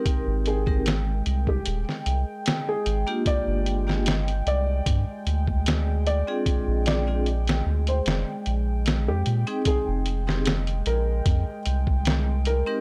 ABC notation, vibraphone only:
X:1
M:4/4
L:1/16
Q:"Swing 16ths" 1/4=75
K:Fdor
V:1 name="Vibraphone"
[CEGB]3 [CEGB] z8 z3 [B,DFG]- | [B,DFG]3 [B,DFG] z8 z3 [CDFA]- | [CDFA]3 [CDFA] z8 z3 [CEAg]- | [CEAg]2 z [CEGA] z8 z3 [CEGB] |]